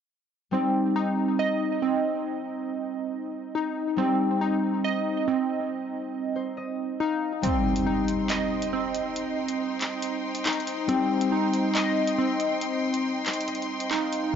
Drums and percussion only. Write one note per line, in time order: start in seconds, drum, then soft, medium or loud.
7.43 closed hi-hat medium
7.76 closed hi-hat medium
8.08 closed hi-hat medium
8.30 clap loud
8.30 closed hi-hat medium
8.62 closed hi-hat medium
8.95 closed hi-hat medium
9.16 closed hi-hat medium
9.48 closed hi-hat medium
9.81 clap medium
9.81 closed hi-hat medium
10.02 closed hi-hat medium
10.35 closed hi-hat medium
10.46 clap loud
10.46 closed hi-hat medium
10.53 closed hi-hat medium
10.60 closed hi-hat soft
10.67 closed hi-hat medium
10.89 closed hi-hat medium
11.21 closed hi-hat medium
11.54 closed hi-hat medium
11.75 clap loud
11.75 closed hi-hat medium
12.07 closed hi-hat medium
12.40 closed hi-hat medium
12.61 closed hi-hat medium
12.94 closed hi-hat medium
13.26 clap medium
13.26 closed hi-hat medium
13.33 closed hi-hat medium
13.41 closed hi-hat medium
13.48 closed hi-hat soft
13.55 closed hi-hat soft
13.62 closed hi-hat soft
13.80 closed hi-hat medium
13.91 clap loud
13.91 closed hi-hat medium
14.13 closed hi-hat medium